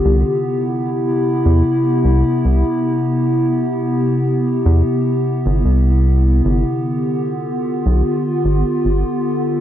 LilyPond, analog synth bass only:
\new Staff \with { instrumentName = "Analog synth bass" } { \clef bass \time 4/4 \key c \major \tempo 4 = 75 c,16 r4. e,16 r8 c,16 r16 c,16 r8. | r4. r16 e,16 r8. g,,16 c,4 | g,,16 r4. b,,16 r8 g,,16 r16 g,,16 r8. | }